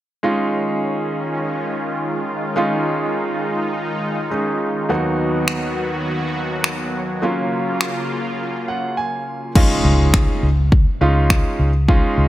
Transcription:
0.23 4.86 D#3 medium
0.23 2.52 G#3 medium
0.23 4.86 G#3 medium
0.23 2.52 C#4 medium
0.23 2.54 C#4 medium
0.23 2.53 D#4 medium
0.23 4.86 F4 medium
0.23 2.53 F4 medium
2.56 4.27 G#3 medium
2.56 4.28 C#4 medium
2.56 4.87 D#4 medium
2.56 4.28 D#4 medium
2.56 4.28 F4 medium
4.31 4.89 G#3 medium
4.31 4.89 C#4 soft
4.31 4.88 D#4 medium
4.31 4.90 G#4 medium
4.89 7.18 D#2 medium
4.89 7.20 D#3 medium
4.89 7.18 F#3 medium
4.89 9.52 F#3 medium
4.89 7.19 B3 medium
4.89 7.20 B3 medium
4.89 7.19 D#4 medium
4.89 7.20 F#4 medium
4.89 7.19 F#4 medium
5.48 finger snap medium
6.64 finger snap loud
7.22 9.53 C#3 medium
7.22 9.51 F#3 medium
7.22 9.51 A#3 medium
7.22 9.53 A#3 medium
7.22 9.52 C#4 medium
7.22 9.53 F4 medium
7.22 9.52 F4 medium
7.81 finger snap loud
8.68 8.95 F#5 medium
8.97 9.52 G#5 medium
9.55 10.45 G#3 medium
9.55 10.45 C#4 medium
9.55 10.46 D#4 medium
9.55 10.46 F4 medium
9.55 kick loud
9.55 crash medium
9.55 impact medium
9.85 10.27 C#2 medium
10.14 finger snap loud
10.14 kick loud
10.43 10.85 C#2 medium
10.72 kick loud
11.01 11.43 C#2 medium
11.01 11.69 G#3 medium
11.01 11.69 C#4 medium
11.01 11.69 D#4 medium
11.01 11.69 F4 medium
11.30 finger snap loud
11.30 kick loud
11.59 12.02 C#2 medium
11.88 12.28 G#3 medium
11.88 12.28 C#4 medium
11.88 12.28 D#4 medium
11.88 12.28 F4 medium
11.88 kick loud
12.18 12.28 C#2 medium

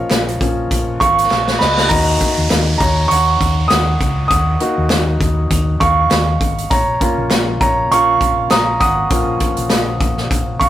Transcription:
0.00 0.41 F3 medium
0.00 0.41 A#3 medium
0.00 0.42 C#4 medium
0.00 1.93 F4 medium
0.00 1.94 G#4 medium
0.00 1.93 A#4 medium
0.00 1.93 C#5 medium
0.00 1.62 D#5 medium
0.00 1.03 F5 medium
0.10 0.35 A#1 loud
0.10 snare loud
0.10 clap medium
0.10 closed hi-hat medium
0.28 closed hi-hat medium
0.41 0.65 A#1 loud
0.41 0.68 F3 soft
0.41 0.68 A#3 soft
0.41 0.68 C#4 medium
0.41 kick medium
0.41 closed hi-hat medium
0.71 0.96 A#1 loud
0.71 kick medium
0.71 closed hi-hat loud
0.71 reverse cymbal medium
1.00 1.26 G#1 medium
1.00 1.58 F5 medium
1.00 1.62 C#6 loud
1.00 kick medium
1.00 closed hi-hat medium
1.18 closed hi-hat medium
1.31 1.56 A#1 medium
1.31 snare medium
1.31 clap medium
1.48 snare medium
1.59 1.86 C#2 medium
1.59 1.89 D#5 medium
1.59 1.88 B5 medium
1.59 snare medium
1.78 snare medium
1.89 2.16 D#2 loud
1.89 2.77 A#3 medium
1.89 2.77 D#4 soft
1.89 2.77 F#4 medium
1.89 2.77 D#5 medium
1.89 2.76 A#5 medium
1.89 kick loud
1.89 crash medium
1.89 downlifter medium
2.21 kick medium
2.21 closed hi-hat medium
2.38 2.49 D#2 loud
2.50 2.76 D#2 loud
2.50 snare loud
2.50 clap medium
2.50 closed hi-hat loud
2.78 3.05 D#2 medium
2.78 3.09 C#5 medium
2.78 3.10 A#5 medium
2.78 kick loud
2.78 closed hi-hat medium
3.08 3.36 D#2 loud
3.08 3.68 F#5 medium
3.08 3.71 C#6 medium
3.08 closed hi-hat loud
3.41 3.65 D#2 loud
3.41 kick medium
3.41 closed hi-hat medium
3.68 3.96 D#2 loud
3.68 4.27 F#5 medium
3.68 4.26 D#6 loud
3.68 snare loud
3.68 clap medium
3.68 closed hi-hat medium
4.01 4.25 C#2 medium
4.01 kick medium
4.01 closed hi-hat medium
4.28 4.56 D#2 loud
4.28 5.47 F#5 medium
4.28 5.45 D#6 loud
4.28 kick loud
4.28 closed hi-hat loud
4.60 5.47 A#3 medium
4.60 5.47 D#4 medium
4.60 5.47 F#4 medium
4.60 closed hi-hat medium
4.78 4.89 D#2 medium
4.90 5.16 D#2 loud
4.90 snare loud
4.90 clap medium
4.90 closed hi-hat medium
5.21 5.45 D#2 loud
5.21 kick loud
5.21 closed hi-hat medium
5.51 5.75 D#2 loud
5.51 kick loud
5.51 closed hi-hat loud
5.80 6.05 D#2 loud
5.80 6.67 F5 medium
5.80 6.73 C#6 loud
5.80 kick medium
5.80 closed hi-hat medium
6.11 6.36 D#2 loud
6.11 snare loud
6.11 clap medium
6.11 closed hi-hat medium
6.41 6.66 G#1 medium
6.41 kick loud
6.41 closed hi-hat medium
6.58 closed hi-hat medium
6.70 6.96 A#1 loud
6.70 7.58 C#5 medium
6.70 7.59 A#5 medium
6.70 kick loud
6.70 closed hi-hat medium
7.00 7.87 A#3 medium
7.00 7.87 C#4 medium
7.00 7.87 F4 medium
7.00 kick medium
7.00 closed hi-hat medium
7.18 7.29 A#1 loud
7.30 7.56 A#1 loud
7.30 snare loud
7.30 clap medium
7.30 closed hi-hat medium
7.61 7.86 A#1 loud
7.61 7.89 C#5 medium
7.61 7.92 A#5 medium
7.61 kick loud
7.61 closed hi-hat medium
7.91 8.16 A#1 loud
7.91 8.18 A#3 medium
7.91 8.18 C#4 soft
7.91 8.19 F4 medium
7.91 8.48 F5 medium
7.91 8.47 C#6 loud
7.91 closed hi-hat loud
8.21 8.46 A#1 loud
8.21 kick medium
8.21 closed hi-hat medium
8.50 8.76 A#1 loud
8.50 8.79 A#5 medium
8.50 8.79 D#6 loud
8.50 snare loud
8.50 clap medium
8.50 closed hi-hat medium
8.80 9.05 G#1 loud
8.80 10.27 F#5 medium
8.80 10.27 D#6 loud
8.80 kick loud
8.80 closed hi-hat medium
9.10 9.35 A#1 loud
9.10 9.97 F3 medium
9.10 9.97 A#3 medium
9.10 9.97 C#4 medium
9.10 kick loud
9.10 closed hi-hat loud
9.40 kick medium
9.40 closed hi-hat medium
9.57 9.69 A#1 medium
9.57 closed hi-hat medium
9.70 9.96 A#1 loud
9.70 snare loud
9.70 clap medium
9.70 closed hi-hat medium
10.01 10.25 A#1 loud
10.01 kick loud
10.01 closed hi-hat medium
10.18 snare soft
10.31 10.56 A#1 loud
10.31 kick loud
10.31 closed hi-hat loud
10.60 10.69 A#1 medium
10.60 10.69 F5 medium
10.60 10.69 C#6 medium
10.60 kick medium
10.60 closed hi-hat medium

